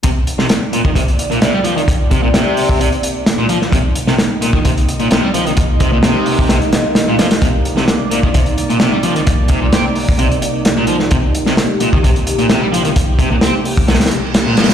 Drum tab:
HH |x---x---x---x---x-x-x-x-x---x-x-|x---x---x---o---x-x-x---x---x---|x---x---x---x---x-x-x-x-x---x-x-|x---x---x---o---x-x-x---x---x-x-|
SD |------o-o---------------o-------|--------o---------------o-----o-|------o-o---------------o-------|--------o-------o---o---o---o-o-|
BD |o-------------o-o---------------|o---o---------o-----------------|o-------------o-o---------------|o---o---------o-----------------|

HH |x---x---x---x---x-x-x-x-x---x-x-|x---x---x---o---x-x-x---x---x---|x---x---x---x---x-x-x-x-x---x-x-|x---x---x---o---xxxxx---x---xxx-|
SD |------o-o---------------o-------|--------o---------------o-----o-|------o-o---------------o-------|--------o-------oooo----o---ooo-|
BD |o-------------o-o---------------|o---o---------o-----------------|o-------------o-o---------------|o---o---------o-----------------|